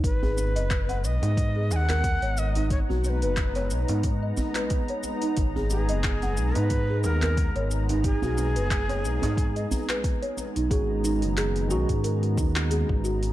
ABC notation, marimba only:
X:1
M:4/4
L:1/16
Q:"Swing 16ths" 1/4=90
K:G#m
V:1 name="Marimba"
z G2 d2 f z D z G2 A z c z D | z F2 B z c z D z d z B z c z D | z G2 d2 f z D z G2 A z c z D | z F2 B z c z D z d z B z c z D |
G z D2 G2 F2 A z D2 G2 F z |]